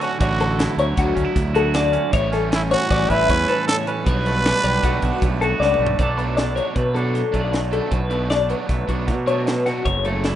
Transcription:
Already playing: D3 F#3 A3 D4 E4 F#4
0.01 C#4 F#4 A4, closed hi-hat
0.19 A1 D3 F#3 A3 D4 F#4 C#5, kick, closed hi-hat
0.40 A4, closed hi-hat
0.59 E4, snare, closed hi-hat
0.77 D2 F#3 C#5, closed hi-hat
0.96 D2 D3 F#3 A3 D4 F#4, kick, closed hi-hat
1.15 D2 C#4, kick, closed hi-hat
1.25 E4
1.36 D2, kick, snare, closed hi-hat
1.54 F#4 A4, closed hi-hat
1.74 D3 D5, snare, closed hi-hat
1.92 C#4, closed hi-hat
2.11 A1 A2 E3 G3 C#4 C#5, kick, closed hi-hat
2.16 E4
2.32 C#4 A4, snare, closed hi-hat
2.51 C#4 E4, snare, closed hi-hat
2.69 E3 F#4 C#5, snare, closed hi-hat
2.89 A1 A2 E3 G3 C#4 D5, kick, closed hi-hat
2.93 E4
3.09 A1 E4 B4 E5, kick, closed hi-hat
3.29 E2 C#4 C#5, kick, closed hi-hat
3.48 A4 B4, closed hi-hat
3.68 A2 A4 C#5, snare, closed hi-hat
3.87 C#4 A4 B4, closed hi-hat
4.05 B1 B2 G3 B3 C#5, kick, closed hi-hat
4.09 D4
4.26 A3 B4, closed hi-hat
4.45 D4, snare, closed hi-hat
4.64 B1 G3 D5, closed hi-hat
4.82 B1 B2 G3 A3 B3 D4 F#4, kick, closed hi-hat
5.02 B1 D4, kick, closed hi-hat
5.22 B1 A3, kick, closed hi-hat
5.41 F#4 A4, closed hi-hat
5.60 C#2 B2 D5, snare
5.74 mid tom
5.79 B1 A3
5.87 floor tom
5.98 B1 B2 F#3 A3 D4 D5, kick, closed hi-hat
6.03 A4
6.17 B2 F#3 A3 B3 D4 B4, closed hi-hat
6.37 D4 D5, snare, closed hi-hat
6.56 B2 F#3 B3 D4 C#5, closed hi-hat
6.76 B2 A3 B4, kick, closed hi-hat
6.95 B2 F#3 B3 D4 A4, closed hi-hat
7.15 F#3, snare, closed hi-hat
7.32 B1 B2 F#3 A3 B3 D4 D5, kick, closed hi-hat
7.52 B2, snare, closed hi-hat
7.72 B2 F#3 A3 B3 D4 A4, closed hi-hat
7.91 B1 B2 B4, kick, closed hi-hat
8.10 B2 F#3 A3 B3 D4, closed hi-hat
8.30 D4 D5, snare, closed hi-hat
8.49 B2 F#3 B3 D4 B4, closed hi-hat
8.69 B1 A3, kick, snare, closed hi-hat
8.88 B1 B2 F#3 B3 D4 F#4, kick, closed hi-hat
9.07 B2 F#3, kick, snare, closed hi-hat
9.27 B2 F#3 A3 B3 D4 C#5, closed hi-hat
9.46 B2 B4, snare, closed hi-hat
9.66 B2 F#3 A3 B3 D4 F#4, snare, closed hi-hat
9.85 F#1 F#2 C#5, kick, closed hi-hat
10.05 C#3 F#3 A3 C#4 A4, closed hi-hat
10.24 E4 D5, snare, closed hi-hat

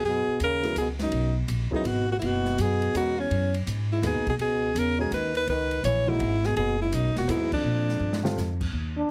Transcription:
0.03 F#2 B2 G#4
0.27 muted upright bass stroke
0.39 D#2 C#3, hi-hat pedal, ride
0.44 A#4
0.63 F#3 B3 E4 G#4, snare, ride
0.75 C#2 B2 G#4, hi-hat pedal, ride
0.99 F#2 D#4, snare, ride
1.12 B1, ride
1.48 A#1, hi-hat pedal, ride
1.71 F#2 F#3 B3 E4 G#4, kick
1.75 D#4
1.84 G#1 B2 F#4, ride
2.09 A#2 F#4
2.16 G#2 E4
2.21 F#1 B2, ride
2.26 F#4
2.45 snare
2.58 F#2 B2 G#4, hi-hat pedal, ride
2.82 ride
2.93 E2 B2 G#3 C#4 F#4 A#4, hi-hat pedal, ride
3.19 E2 C#4
3.30 F#2, ride
3.54 ride
3.66 G#2, hi-hat pedal, ride
3.91 G#2 E4
4.02 D#2 B2 A#3 D#4 G#4 B4, snare, hi-hat pedal, ride
4.06 G#4
4.14 C#2
4.26 B1 B2 G#4, kick, ride
4.38 C#2 B2 G#4, ride
4.75 E2 C#3, hi-hat pedal, ride
4.79 A#4
4.98 B2 G#3 C#4 F#4 G#4 A#4
5.11 D#2 D#3 B4, hi-hat pedal, ride
5.35 D#3 B4, ride
5.47 C#2 D#3 B4, ride
5.71 ride
5.83 A#1 E3 C#5, hi-hat pedal, ride
6.07 G#2 E3 A#3 D#4 E4 F#4
6.19 G#1, ride
6.44 B2 G#4, snare
6.56 F#1 B2 G#4, ride
6.80 G#2 E4
6.92 B1 F#2 D#4, hi-hat pedal, ride
7.04 F#1
7.15 E1 A#2 F#4, snare, ride
7.28 D#2 G#2 F#3 B3 E4 G#4, hi-hat pedal, ride
7.52 F2 D4, kick, crash
7.63 A#2
7.89 snare
7.99 G2
8.13 snare
8.23 D3 G3 C4 F4, snare
8.37 F2, snare, hi-hat pedal
8.61 kick, crash
8.72 D#2
8.97 D4

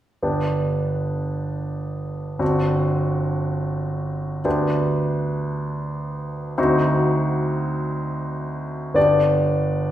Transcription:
0.23 G1 B3 D4 G4
2.39 G1 C4 D4 F#4
4.45 D2 B3 D4 G4
6.58 D2 C4 D#4 F#4
8.94 G1 B3 D4 G4 D5

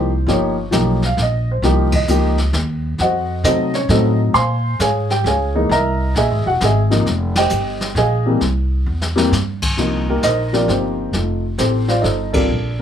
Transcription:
Already playing: C2 C5
0.26 G1 F3 A#3 D#4 G4 C#5, brush sweep, snare
0.71 B1 F3 A#3 D#4 G4, snare, hi-hat pedal
1.02 F5, snare
1.17 A#1, snare
1.22 D#5
1.51 C5
1.62 C2 F3 A#3 D#4 G4, brush sweep, snare
1.92 D#5, kick, ride
2.08 C#2 F3 A#3 D#4 G4, hi-hat pedal
2.38 snare
2.53 D#2, snare
2.98 F2 F#4 C5 D#5 F#5, brush sweep, snare
3.44 C3 F#3 A3 C4 D#4 A4 C5 D#5, snare, hi-hat pedal
3.73 C#4 C#5, snare
3.89 A2 F#3 A3 C4 D#4 A4 C5 D#5, snare
4.34 A#2 C5 F5 G#5 C6, brush sweep, snare
4.79 G#2 G#4 C#5 F5 G#5, snare, hi-hat pedal
5.10 G4 G5, snare
5.24 C#2 G#4 C#5 F5 G#5, snare
5.55 E3 G#3 A#3 D#4
5.69 C2 A#4 D#5 E5 A#5, brush sweep, snare
6.15 A#1 G#4 D#5 E5 G#5, snare
6.30 G#1
6.46 E1 F#4 F#5
6.61 G#1 G#4 D#5 E5 G#5, snare, hi-hat pedal
6.90 C3 F3 A#3 D#4, snare
7.06 F1, brush sweep, snare
7.35 G4 C5 D#5 G5, snare, ride
7.50 G1, hi-hat pedal
7.81 snare
7.95 A#1 G#4 D#5 F5 G#5, snare
8.26 E3 G3 A#3 C4
8.41 C2, brush sweep, snare
8.86 E2
9.01 snare
9.16 E3 G3 A#3 C4, snare
9.31 G2, snare, hi-hat pedal
9.62 kick, crash
9.77 C2 C3 F3 A#3 D#4, brush sweep, snare
10.09 A#3 D#4 G4 A#4
10.22 A#1 D#4 A#4 C5 D#5, snare, hi-hat pedal
10.53 C3 F3 A#3 D4 F4 G4 A#4 D5, snare
10.68 G1 C4 D#4 G4 C5, snare
11.13 F1 A3 D#4 F4 A4, brush sweep, snare
11.58 A1 C4 G4 A4 C5, snare, hi-hat pedal
11.88 F4 C5 D5 F5, snare
12.01 G1 D#4 A4 C5 D#5, snare
12.33 G3 C4 D4 F4 A4 A#4 D5, kick, ride
12.49 A#1, brush sweep

